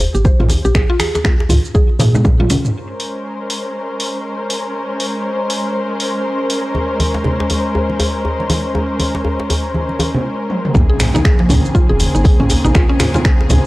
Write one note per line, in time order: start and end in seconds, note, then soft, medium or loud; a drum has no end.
0.00 open hi-hat medium
0.00 djembe tone medium
0.00 shaker medium
0.14 0.31 G#1 medium
0.14 0.24 G4 medium
0.14 shaker medium
0.24 0.39 C5 medium
0.24 kick loud
0.24 high conga medium
0.24 djembe tone medium
0.24 shaker soft
0.40 0.56 A#1 loud
0.40 0.45 F4 medium
0.40 mid tom medium
0.40 muted conga medium
0.49 open hi-hat medium
0.49 djembe slap medium
0.49 high conga loud
0.49 djembe tone medium
0.49 shaker medium
0.65 0.72 A#1 medium
0.65 0.74 G4 loud
0.65 shaker soft
0.75 0.85 A#1 loud
0.75 0.88 G#4 loud
0.75 finger snap medium
0.75 kick loud
0.75 muted conga medium
0.75 djembe tone medium
0.75 shaker soft
0.90 0.95 F4 loud
0.99 1.13 G#4 medium
0.99 finger snap medium
0.99 open hi-hat medium
0.99 high conga medium
0.99 djembe tone medium
0.99 shaker medium
1.15 1.20 G#4 medium
1.15 djembe slap medium
1.15 muted conga soft
1.15 shaker medium
1.24 finger snap medium
1.24 kick loud
1.24 djembe tone medium
1.24 low conga medium
1.24 shaker soft
1.40 djembe slap medium
1.49 1.60 C#2 medium
1.49 1.58 F4 medium
1.49 mid tom medium
1.49 open hi-hat medium
1.49 muted conga medium
1.49 djembe tone medium
1.49 high conga medium
1.49 shaker medium
1.65 shaker medium
1.74 1.88 G#4 loud
1.74 kick loud
1.74 djembe tone medium
1.74 high conga medium
1.74 shaker soft
1.89 muted conga soft
1.99 2.57 A#2 medium
1.99 2.13 G#4 medium
1.99 mid tom loud
1.99 open hi-hat medium
1.99 djembe slap loud
1.99 high conga medium
1.99 djembe tone medium
1.99 shaker medium
2.15 2.24 G#3 medium
2.15 low conga loud
2.15 shaker medium
2.25 kick loud
2.25 high tom medium
2.25 djembe tone loud
2.25 shaker soft
2.40 2.49 F4 loud
2.40 high tom medium
2.40 muted conga soft
2.40 high conga medium
2.50 2.64 C#4 medium
2.50 open hi-hat loud
2.50 mid tom medium
2.50 djembe tone medium
2.50 shaker medium
2.65 mid tom medium
2.65 shaker soft
2.75 10.71 G#3 medium
2.75 10.71 C#4 medium
2.75 10.71 A#4 medium
2.75 10.71 C5 medium
3.00 open hi-hat medium
3.50 open hi-hat medium
4.00 open hi-hat medium
4.50 open hi-hat medium
5.00 open hi-hat medium
5.50 open hi-hat medium
6.00 open hi-hat medium
6.50 open hi-hat medium
6.75 muted conga soft
6.75 djembe tone medium
7.00 open hi-hat medium
7.00 djembe tone medium
7.00 high conga medium
7.14 djembe slap medium
7.14 muted conga soft
7.24 djembe tone medium
7.24 low conga medium
7.40 djembe slap medium
7.50 open hi-hat medium
7.50 muted conga soft
7.50 djembe tone medium
7.75 djembe tone medium
7.90 muted conga soft
8.00 open hi-hat medium
8.00 djembe tone loud
8.25 djembe tone medium
8.40 muted conga soft
8.50 open hi-hat medium
8.50 djembe slap medium
8.50 djembe tone loud
8.50 high conga loud
8.75 muted conga medium
8.75 djembe tone medium
8.99 open hi-hat medium
8.99 high conga medium
8.99 djembe tone medium
9.14 muted conga soft
9.14 djembe slap medium
9.25 djembe tone medium
9.40 djembe slap medium
9.50 open hi-hat medium
9.50 muted conga soft
9.50 djembe tone medium
9.74 high conga medium
9.74 djembe tone medium
9.89 muted conga soft
9.99 open hi-hat medium
9.99 djembe slap medium
9.99 djembe tone medium
9.99 high conga medium
10.15 low conga loud
10.50 high tom medium
10.65 mid tom medium
10.74 10.85 A#1 loud
10.74 13.66 C#3 medium
10.74 10.83 A#3 medium
10.74 13.66 A#3 medium
10.74 13.66 C4 medium
10.74 13.66 G#4 medium
10.74 kick loud
10.74 impact medium
10.74 muted conga medium
10.74 high conga medium
10.74 djembe tone loud
10.74 shaker soft
10.90 10.99 G#4 medium
11.00 finger snap loud
11.00 mid tom medium
11.00 open hi-hat medium
11.00 djembe tone medium
11.00 shaker medium
11.14 11.24 D#4 loud
11.14 muted conga soft
11.14 djembe slap medium
11.14 high conga loud
11.14 low conga medium
11.14 shaker medium
11.25 11.39 G#4 medium
11.25 finger snap loud
11.25 kick loud
11.25 djembe tone medium
11.25 shaker soft
11.39 11.49 F3 medium
11.39 djembe slap medium
11.49 11.60 C#2 medium
11.49 11.58 C#4 medium
11.49 mid tom medium
11.49 open hi-hat medium
11.49 muted conga soft
11.49 djembe tone medium
11.49 high conga medium
11.49 low conga loud
11.49 shaker medium
11.65 high conga medium
11.65 shaker medium
11.75 11.88 F4 loud
11.75 kick loud
11.75 djembe tone medium
11.75 shaker soft
11.89 12.06 F1 loud
11.89 11.99 G#4 medium
11.89 muted conga soft
12.00 open hi-hat medium
12.00 djembe tone loud
12.00 high conga medium
12.00 shaker loud
12.15 12.31 G#1 medium
12.15 12.24 D#4 medium
12.15 shaker medium
12.24 12.39 G#4 medium
12.24 kick loud
12.24 open hi-hat medium
12.24 djembe tone medium
12.24 shaker soft
12.40 12.56 A#1 loud
12.40 12.45 C#4 medium
12.40 mid tom medium
12.40 muted conga medium
12.50 open hi-hat loud
12.50 djembe slap medium
12.50 djembe tone medium
12.50 shaker loud
12.65 12.72 A#1 medium
12.65 12.74 D#4 loud
12.65 low conga loud
12.65 shaker soft
12.75 12.86 A#1 loud
12.75 12.88 F4 loud
12.75 finger snap medium
12.75 kick loud
12.75 muted conga medium
12.75 high conga medium
12.75 djembe tone loud
12.75 shaker soft
12.89 12.95 C#4 loud
13.00 13.13 F4 medium
13.00 finger snap loud
13.00 mid tom medium
13.00 open hi-hat medium
13.00 djembe tone medium
13.00 shaker loud
13.14 13.20 F4 medium
13.14 djembe slap medium
13.14 muted conga soft
13.14 high conga loud
13.14 low conga loud
13.14 shaker medium
13.25 finger snap loud
13.25 kick loud
13.25 djembe tone medium
13.25 shaker soft
13.41 djembe slap medium
13.49 13.61 C#2 medium
13.49 13.58 C#4 medium
13.49 mid tom medium
13.49 open hi-hat medium
13.49 muted conga medium
13.49 high conga loud
13.49 djembe tone loud
13.49 low conga loud
13.49 shaker loud